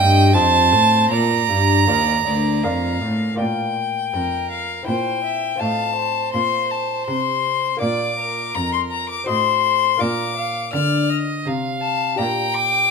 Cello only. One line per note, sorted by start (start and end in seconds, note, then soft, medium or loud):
0.00 0.37 G2 medium
0.35 0.74 F2 medium
0.72 1.10 A2 medium
1.10 1.48 A#2 medium
1.49 1.89 G2 medium
1.87 2.25 D#2 medium
2.26 2.65 D2 medium
2.64 3.01 F2 medium
3.02 3.38 A2 medium
3.39 4.10 A#2 medium
4.13 4.83 F2 medium
4.88 5.57 A#2 medium
5.60 6.30 A2 medium
6.34 7.04 A#2 medium
7.08 7.77 C3 medium
7.81 8.51 A#2 medium
8.55 9.25 F2 medium
9.29 9.97 A2 medium
10.01 10.70 A#2 medium
10.73 11.42 D3 medium
11.46 12.15 C3 medium
12.19 12.88 A#2 medium